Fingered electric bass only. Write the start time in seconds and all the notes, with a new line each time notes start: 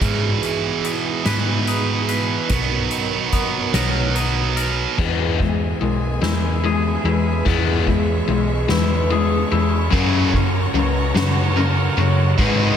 0.01 G#2
1.25 G#2
2.49 B1
3.73 B1
4.98 E2
5.81 B1
6.21 E2
7.04 E2
7.46 E2
8.28 B1
8.69 E2
9.51 E2
9.92 F#2
10.73 C#2
11.14 F#2
11.97 F#2
12.38 G#2